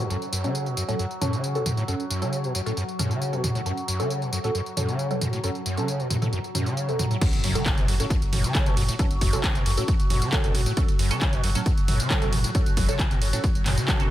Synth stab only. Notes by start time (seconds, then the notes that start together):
0.10 F#3 C#4 A4
0.44 F#3 C#4 A4
0.88 F#3 C#4 A4
1.21 F#3 C#4 A4
1.55 F#3 C#4 A4
1.88 F#3 C#4 A4
2.22 F#3 C#4 A4
2.66 F#3 C#4 A4
2.99 F#3 C#4 A4
3.33 F#3 C#4 A4
3.66 F#3 C#4 A4
4.00 F#3 C#4 A4
4.44 F#3 C#4 A4
4.77 F#3 C#4 A4
5.11 F#3 C#4 A4
5.44 F#3 C#4 A4
5.77 F#3 C#4 A4
6.22 F#3 C#4 A4
6.55 F#3 C#4 A4
6.88 F#3 C#4 A4
7.21 F#3 C#4 A4
7.55 F#3 C#4 A4
8.00 F#3 C#4 A4
8.55 F#3 C#4 A4
8.66 F#3 C#4 A4
8.99 F#3 C#4 A4
9.33 F#3 C#4 A4
9.77 F#3 C#4 A4
10.32 F#3 C#4 A4
10.44 F#3 C#4 A4
10.77 F#3 C#4 A4
11.11 F#3 C#4 A4
11.55 F#3 C#4 A4
12.10 F#3 C#4 A4
12.22 F#3 C#4 A4
12.55 F#3 C#4 A4
12.89 F#3 C#4 A4
13.33 F#3 C#4 A4
13.88 F#3 C#4 A4
14.00 F#3 C#4 A4